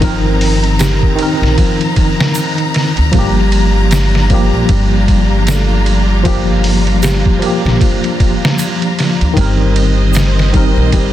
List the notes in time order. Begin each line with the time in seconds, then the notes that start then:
Already playing: G1 G3 A3 C4 D#4 A#4 A#5
0.00 D#3 F3 C4, kick, ride
0.04 A#4
0.41 open hi-hat
0.63 ride
0.79 G4, snare, ride, shaker
1.03 kick
1.15 D#3 C4, ride
1.23 A#4
1.42 A#1, snare
1.57 F3, kick, ride
1.81 ride
1.96 kick, ride
2.20 snare
2.35 ride, shaker
2.58 ride
2.74 snare, ride
2.97 D2, ride
3.12 G1 F3 G3 A#3 D4 F4, kick, ride
3.19 G4
3.52 ride
3.91 snare, ride, shaker
4.15 snare
4.30 F3 G3 A#3, kick, ride
4.34 G4
4.53 A#1
4.69 G1 G3, kick, ride
5.08 kick, ride
5.47 A3, snare, ride, shaker
5.86 ride
6.23 F3 A#3, kick, ride
6.28 G4
6.64 open hi-hat
6.87 ride
7.03 G4, snare, ride, shaker
7.26 kick
7.39 F3 A#3, ride
7.46 G4
7.65 A#1, snare
7.81 F3, kick, ride
8.04 ride
8.20 kick, ride
8.45 snare
8.59 ride, shaker
8.82 ride
8.99 snare, ride
9.21 D2, ride
9.33 G1 D#3 G3 C4 C5 D#5, kick, ride
9.41 A#4
9.76 ride
10.14 snare, ride, shaker
10.39 snare
10.53 D#3 G3 C4, kick, ride
10.57 A#4
10.77 A#1
10.92 G1 G3, kick, ride